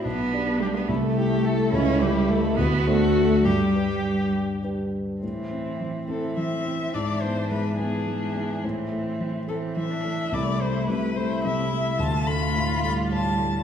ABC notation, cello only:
X:1
M:6/8
L:1/16
Q:3/8=71
K:G
V:1 name="Cello" clef=bass
B,4 G, B, A,6 | ^C2 G,2 A,2 B,2 A,4 | G,6 z6 | [K:Am] E,6 E,6 |
E,6 E,6 | E,6 E,6 | A,6 A,6 | A,6 G,6 |]